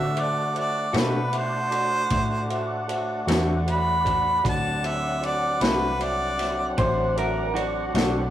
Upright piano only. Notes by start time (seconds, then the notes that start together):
0.15 F#4 A4 C5 E5
0.53 F#4 A4 C5 E5
0.92 F#4 A4 C5 E5
1.31 F#4 A4 C5 E5
1.70 F#4 A4 C5 D5
2.10 F#4 A4 C5 E5
2.48 F#4 A4 C5 E5
2.87 F#4 A4 C5 E5
3.26 F#4 A4 C5 E5
3.65 F#4 A4 C5 E5
4.03 F#4 A4 C5 D5
4.42 F#4 A4 C5 D5
4.81 F#4 A4 C5 E5
5.21 F#4 A4 C5 D5
5.60 F#4 A4 C5 E5
5.98 F#4 A4 C5 E5
6.37 F#4 A4 C5 E5
6.76 F#4 A4 C5 E5
7.15 F#4 A4 C5 E5
7.54 F#4 A4 C5 D5
7.93 F#4 A4 C5 D5